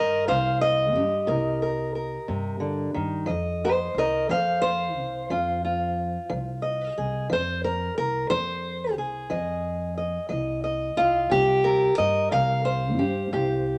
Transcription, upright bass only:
Already playing: G2
0.29 C2
0.96 G2
1.29 C2
2.29 G2
2.96 G2
3.29 F2
3.95 C2
4.29 F2
4.96 C2
5.30 F2
6.31 C2
6.98 C2
7.32 F2
7.98 C2
8.31 F2
8.95 C2
9.31 F2
10.30 C2
10.97 C2
11.31 C2
11.99 G2
12.32 C2
12.98 G2
13.33 C2

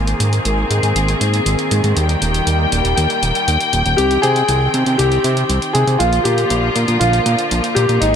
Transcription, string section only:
Already playing: D#3 A#3 C4 G#4
1.96 G3 A#3 G5
3.98 D#3 C4
6.00 D3 F3 A#3 F4
8.02 D#3 C4 G#4

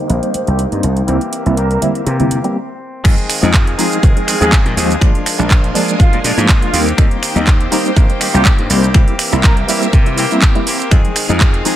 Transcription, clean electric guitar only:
Already playing: C4 G4
0.08 D#3 A#3
0.12 C4 G4
1.07 E3 A#3 C4 G4
1.56 E3 A#3 C4 G4
2.04 E3 A#3
2.09 C4 G4
3.04 D#3 G#3 C4 G#4
3.42 G#3 C4 G#4
3.53 D#3 G#3 C4 G#4
3.78 D#3 G#3 C4 G#4
4.02 D#3 G#3 C4 G#4
4.27 D#3 G#3 C4 G#4
4.51 D#3 C4 G#4
4.76 D#3 G#3 C4 G#4
4.89 G#3 C4 G#4
5.01 F3 G#3 D4 F4
5.38 G#3 D4 F4
5.50 F3 G#3 D4 F4
5.74 F3 G#3 D4 F4
5.99 F3 G#3 D4 F4
6.23 F3 G#3 D4 F4
6.37 G#3 D4 F4
6.48 F3 G#3 D4 F4
6.72 D#3 A#3 C4 G4
6.86 A#3 C4 G4
6.97 D#3 A#3 C4 G4
7.35 A#3 C4 G4
7.47 D#3 A#3 C4 G4
7.71 D#3 A#3 C4 G4
7.84 A#3 C4 G4
7.95 D#3 A#3 C4 G4
8.20 D#3 A#3 C4 G4
8.45 D#3 A#3 C4 G4
8.69 D#3 A#3 C4 G4
8.82 A#3 C4 G4
8.94 E3 A#3 C4 G4
9.32 A#3 C4 G4
9.43 E3 A#3 C4 G4
9.68 E3 A#3 C4 G4
9.81 A#3 C4 G4
9.92 E3 A#3 C4 G4
10.17 E3 A#3 C4 G4
10.42 E3 C4
10.66 E3 A#3 C4 G4
10.79 A#3 C4 G4
10.91 D#3 G#3 C4 G#4
11.28 G#3 C4 G#4
11.40 D#3 G#3 C4 G#4
11.64 D#3 G#3 C4 G#4

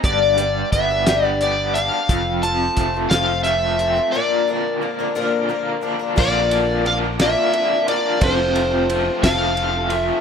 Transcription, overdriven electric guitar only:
0.03 G2
0.37 G3
0.72 B3
1.06 G4
1.41 B3
1.75 D4
2.09 F2
2.44 F3
2.78 A3
3.12 F4
3.45 A3
3.79 C4
4.14 A#2
4.48 D3
4.82 A#3
5.15 F4
5.50 A#3
5.83 D4
6.16 A#2 D3 A#3 D4 F4
6.51 A#3 D4 F4
6.85 D3 A#3 D4 F4
7.19 A#3 D4 F4
7.52 D3 A#3 D4 F4
7.87 A#3 D4 F4
8.20 F2 C3 F3 A3 C4 F4
8.55 F3 A3 C4 F4
8.90 F3 A3 C4 F4
9.23 F3 A3 C4 F4
9.57 F3 A3 C4 F4
9.90 F3 A3 C4 F4

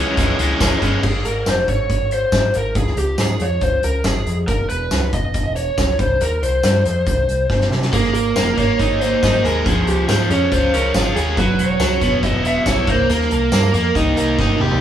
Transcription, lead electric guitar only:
1.05 G#4
1.26 A#4
1.48 C5
1.69 C#5
2.13 C5
2.56 A#4
2.77 G#4
2.99 G4
3.21 G#4
3.42 C#5
3.63 C5
3.84 A#4
4.06 G#4
4.48 A#4
4.69 B4
5.14 D#5
5.56 C#5
6.00 C5
6.21 A#4
6.43 C5
7.94 G#4
8.14 A#4
8.59 C#5
9.01 C5
9.46 A#4
9.67 G#4
9.89 G4
10.08 G#4
10.31 C#5
10.53 C5
10.74 A#4
10.96 G#4
11.16 G#4
11.39 B4
11.60 C#5
12.25 D#5
12.47 E5
12.68 C#5
12.89 C5
13.11 A#4
13.33 A#4

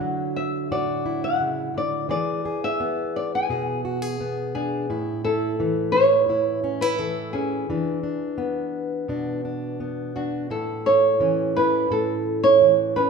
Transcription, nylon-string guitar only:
Already playing: F#5
0.36 E5
0.72 D5
1.24 F#5
1.78 D5
2.11 D5
2.64 E5
3.16 D5
3.35 G#5
4.55 G#4
5.24 A4
5.92 C#5
6.81 B4
6.98 A4
7.33 G#4
10.16 F#4
10.51 A4
10.86 C#5
11.56 B4
11.92 A4
12.44 C#5
12.96 B4

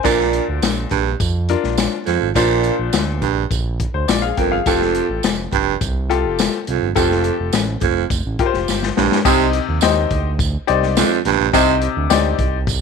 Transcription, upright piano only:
Already playing: C5 G#5
0.04 A#2 D4 F4 A#4
1.50 D4 F4 A#4
2.36 A#2 D4 F4 C5
3.94 C5
4.08 F4 D5
4.22 G#4 F5
4.37 A#4 G5
4.52 G#4 F5
4.67 F4 G4 A4
6.10 F4 G4 A4
6.95 F4 G4 A4
8.39 F4 G4 A#4
8.46 C5
9.25 C3 D#4 G4 C5 D#5
9.82 D#4 G4 C5 D#5
10.67 D#4 G4 C5 D5
11.53 C3 D#4 G4 C5 D#5
12.10 D#4 G4 C5 D5

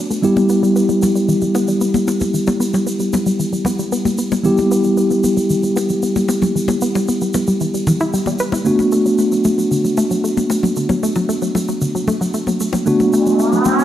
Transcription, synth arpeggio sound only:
0.10 A3
0.23 E3
0.37 G3
0.50 B3
0.63 G3
0.76 B3
0.89 G3
1.02 B3
1.16 G3
1.28 E3
1.42 G3
1.55 B3
1.68 G3
1.81 B3
1.95 G3
2.08 B3
2.21 G3
2.34 E3
2.47 G3
2.60 B3
2.74 G3
2.87 B3
3.00 G3
3.13 B3
3.26 G3
3.39 E3
3.53 G3
3.66 B3
3.79 G3
3.92 B3
4.06 G3
4.19 B3
4.32 G3
4.45 E3
4.58 G3
4.71 B3
4.85 G3
4.97 B3
5.11 G3
5.24 B3
5.37 G3
5.50 E3
5.64 G3
5.76 B3
5.90 G3
6.03 B3
6.16 G3
6.29 B3
6.43 G3
6.55 E3
6.69 G3
6.82 B3
6.95 G3
7.09 B3
7.22 G3
7.35 B3
7.48 G3
7.61 E3
7.74 G3
7.87 E3
8.01 E4
8.14 G3
8.27 G3
8.40 B4
8.53 E4
8.66 D3
8.79 F#3
8.92 A3
9.06 F#3
9.19 A3
9.32 F#3
9.45 A3
9.58 F#3
9.71 D3
9.84 F#3
9.98 A3
10.11 F#3
10.24 A3
10.37 F#3
10.50 A3
10.63 F#3
10.77 D3
10.90 F#3
11.03 A3
11.16 F#3
11.29 A3
11.42 F#3
11.55 A3
11.69 F#3
11.82 D3
11.95 F#3
12.08 A3
12.21 F#3
12.34 A3
12.47 F#3
12.61 A3
12.74 F#3
12.87 D3
13.00 F#3
13.13 A3
13.26 F#3
13.40 A3
13.53 F#3
13.66 A3
13.79 F#3

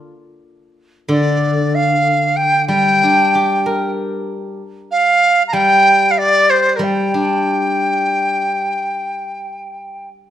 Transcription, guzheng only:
Already playing: F4
1.09 D3
2.68 G3
3.03 D4
3.35 G4
3.66 A#4
5.53 G3
6.79 G3
7.14 D4

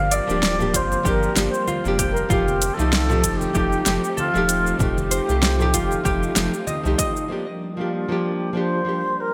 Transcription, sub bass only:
Already playing: G1
0.29 D1
0.74 G1
1.05 G1
1.37 G1
1.85 F1
2.30 F1
2.79 C2
3.24 F1
3.55 F1
3.87 F1
4.35 D#1
4.80 F1
5.29 C2
5.74 F1
6.05 F1
6.37 F1
6.85 C2

